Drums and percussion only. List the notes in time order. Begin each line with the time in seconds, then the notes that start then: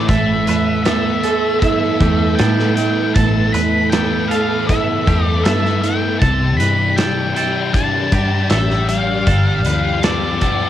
0.09 kick, closed hi-hat
0.47 closed hi-hat
0.86 snare, closed hi-hat
1.24 closed hi-hat
1.62 kick, closed hi-hat
2.01 kick, closed hi-hat
2.39 snare, closed hi-hat
2.59 snare
2.77 closed hi-hat
3.15 kick, closed hi-hat
3.54 closed hi-hat
3.92 snare, closed hi-hat
4.31 closed hi-hat
4.69 kick, closed hi-hat
5.07 kick, closed hi-hat
5.45 snare, closed hi-hat
5.65 snare
5.84 closed hi-hat
6.22 kick, closed hi-hat
6.60 closed hi-hat
6.98 snare, closed hi-hat
7.36 closed hi-hat
7.74 kick, closed hi-hat
8.12 kick, closed hi-hat
8.50 snare, closed hi-hat
8.70 snare
8.89 closed hi-hat
9.27 kick, closed hi-hat
9.65 closed hi-hat
10.03 snare, closed hi-hat
10.41 kick, closed hi-hat